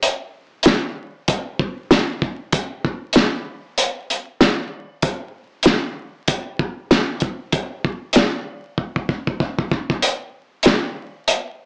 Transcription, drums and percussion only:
0.03 closed hi-hat medium
0.63 snare loud
0.63 closed hi-hat medium
1.28 kick loud
1.28 closed hi-hat loud
1.59 kick medium
1.91 snare loud
1.91 snare medium
1.91 closed hi-hat medium
2.22 kick medium
2.53 kick loud
2.53 closed hi-hat medium
2.85 kick medium
3.13 snare loud
3.13 snare medium
3.13 closed hi-hat medium
3.78 closed hi-hat loud
4.10 closed hi-hat medium
4.41 snare loud
4.41 snare medium
4.41 closed hi-hat medium
5.02 kick loud
5.02 closed hi-hat medium
5.63 snare loud
5.63 snare medium
5.63 closed hi-hat medium
6.28 kick loud
6.28 closed hi-hat loud
6.59 kick medium
6.91 snare loud
6.91 snare medium
6.91 closed hi-hat medium
7.20 kick medium
7.20 closed hi-hat soft
7.52 kick loud
7.52 closed hi-hat medium
7.85 kick medium
8.13 snare loud
8.13 snare medium
8.13 closed hi-hat medium
8.78 kick medium
8.96 kick medium
9.09 kick medium
9.27 kick medium
9.40 kick medium
9.59 kick medium
9.72 kick loud
9.90 kick medium
10.02 closed hi-hat medium
10.63 snare loud
10.63 closed hi-hat medium
11.28 closed hi-hat loud

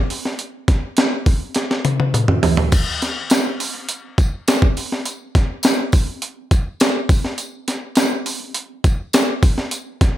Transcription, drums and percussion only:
0.10 open hi-hat medium
0.25 snare soft
0.39 closed hi-hat medium
0.68 kick medium
0.68 snare soft
0.68 closed hi-hat medium
0.97 snare medium
0.97 closed hi-hat medium
1.26 kick medium
1.26 open hi-hat medium
1.55 snare medium
1.55 closed hi-hat medium
1.71 snare soft
1.85 closed hi-hat medium
1.85 high tom medium
2.00 high tom medium
2.14 closed hi-hat medium
2.14 mid tom medium
2.28 mid tom medium
2.43 floor tom medium
2.43 open hi-hat medium
2.57 floor tom medium
2.72 kick loud
2.72 closed hi-hat medium
2.72 crash medium
2.72 tambourine medium
3.02 snare soft
3.02 closed hi-hat medium
3.02 tambourine soft
3.30 snare loud
3.30 closed hi-hat medium
3.30 tambourine medium
3.60 open hi-hat medium
3.60 tambourine soft
3.89 closed hi-hat medium
3.89 tambourine soft
4.18 kick medium
4.18 closed hi-hat medium
4.18 tambourine soft
4.48 snare loud
4.48 closed hi-hat loud
4.48 tambourine medium
4.62 kick medium
4.77 open hi-hat medium
4.77 tambourine soft
4.92 snare soft
5.05 closed hi-hat medium
5.05 tambourine medium
5.35 kick medium
5.35 snare soft
5.35 closed hi-hat medium
5.35 tambourine soft
5.63 snare loud
5.63 closed hi-hat medium
5.63 tambourine medium
5.92 kick medium
5.92 open hi-hat medium
5.92 tambourine soft
6.22 closed hi-hat medium
6.51 kick loud
6.51 closed hi-hat medium
6.51 tambourine soft
6.80 snare loud
6.80 closed hi-hat medium
6.80 tambourine medium
7.09 kick loud
7.09 open hi-hat medium
7.09 tambourine soft
7.25 snare soft
7.38 closed hi-hat medium
7.38 tambourine medium
7.68 snare soft
7.68 closed hi-hat medium
7.68 tambourine soft
7.95 snare loud
7.95 closed hi-hat medium
7.95 tambourine medium
8.26 open hi-hat medium
8.26 tambourine soft
8.54 closed hi-hat medium
8.84 kick loud
8.84 closed hi-hat medium
8.84 tambourine soft
9.13 snare loud
9.13 closed hi-hat loud
9.13 tambourine medium
9.43 kick medium
9.43 open hi-hat medium
9.43 tambourine soft
9.58 snare soft
9.71 closed hi-hat medium
9.71 tambourine medium
10.01 kick medium
10.01 snare soft
10.01 closed hi-hat medium

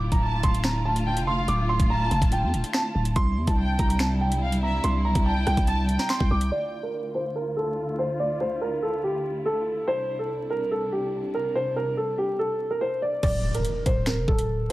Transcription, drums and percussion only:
0.12 kick medium
0.12 closed hi-hat medium
0.43 kick medium
0.43 closed hi-hat medium
0.54 closed hi-hat medium
0.64 finger snap medium
0.64 snare loud
0.64 closed hi-hat medium
0.96 closed hi-hat medium
1.17 closed hi-hat medium
1.48 closed hi-hat medium
1.80 kick medium
1.80 closed hi-hat medium
2.11 closed hi-hat medium
2.22 kick loud
2.22 closed hi-hat medium
2.32 closed hi-hat medium
2.54 closed hi-hat medium
2.64 closed hi-hat medium
2.73 finger snap medium
2.73 snare loud
3.05 closed hi-hat medium
3.16 kick loud
3.16 closed hi-hat medium
3.47 kick medium
3.47 closed hi-hat medium
3.79 kick medium
3.79 closed hi-hat medium
3.90 closed hi-hat medium
3.99 finger snap loud
3.99 snare loud
3.99 closed hi-hat medium
4.32 closed hi-hat medium
4.52 closed hi-hat medium
4.84 closed hi-hat medium
5.15 kick loud
5.15 closed hi-hat medium
5.47 cross-stick medium
5.47 closed hi-hat medium
5.57 kick loud
5.57 closed hi-hat medium
5.67 closed hi-hat medium
5.89 closed hi-hat medium
5.99 snare medium
5.99 closed hi-hat medium
6.09 finger snap medium
6.09 snare loud
6.20 kick loud
6.41 closed hi-hat medium
13.23 kick loud
13.23 closed hi-hat medium
13.23 crash medium
13.54 closed hi-hat medium
13.65 closed hi-hat medium
13.86 kick medium
13.86 closed hi-hat medium
14.06 finger snap medium
14.06 snare loud
14.06 closed hi-hat medium
14.28 kick loud
14.39 closed hi-hat medium

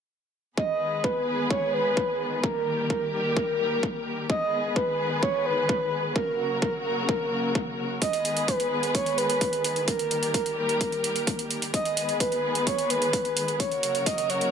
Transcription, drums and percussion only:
0.57 kick loud
1.04 kick loud
1.51 kick loud
1.97 kick loud
2.44 kick loud
2.90 kick loud
3.37 kick loud
3.83 kick loud
4.30 kick loud
4.76 kick loud
5.23 kick loud
5.69 kick loud
6.16 kick loud
6.62 kick loud
7.09 kick loud
7.55 kick loud
8.02 kick loud
8.02 closed hi-hat medium
8.13 closed hi-hat soft
8.25 closed hi-hat medium
8.37 closed hi-hat soft
8.48 kick loud
8.48 closed hi-hat medium
8.60 closed hi-hat soft
8.83 closed hi-hat soft
8.95 kick loud
8.95 closed hi-hat medium
9.06 closed hi-hat soft
9.18 closed hi-hat medium
9.30 closed hi-hat soft
9.41 kick loud
9.41 closed hi-hat medium
9.53 closed hi-hat soft
9.64 closed hi-hat medium
9.76 closed hi-hat soft
9.88 kick loud
9.88 closed hi-hat medium
9.99 closed hi-hat soft
10.11 closed hi-hat medium
10.23 closed hi-hat soft
10.34 kick loud
10.34 closed hi-hat medium
10.46 closed hi-hat soft
10.69 closed hi-hat soft
10.81 kick loud
10.81 closed hi-hat medium
10.92 closed hi-hat soft
11.04 closed hi-hat medium
11.16 closed hi-hat soft
11.27 kick loud
11.27 closed hi-hat medium
11.39 closed hi-hat soft
11.51 closed hi-hat medium
11.62 closed hi-hat soft
11.74 kick loud
11.74 closed hi-hat medium
11.85 closed hi-hat soft
11.97 closed hi-hat medium
12.09 closed hi-hat soft
12.20 kick loud
12.20 closed hi-hat medium
12.32 closed hi-hat soft
12.55 closed hi-hat soft
12.67 kick loud
12.67 closed hi-hat medium
12.78 closed hi-hat soft
12.90 closed hi-hat medium
13.02 closed hi-hat soft
13.13 kick loud
13.13 closed hi-hat medium
13.25 closed hi-hat soft
13.37 closed hi-hat medium
13.48 closed hi-hat soft
13.60 kick loud
13.60 closed hi-hat medium
13.72 closed hi-hat soft
13.83 closed hi-hat medium
13.95 closed hi-hat soft
14.06 kick loud
14.06 closed hi-hat medium
14.18 closed hi-hat soft
14.30 closed hi-hat soft
14.41 closed hi-hat soft

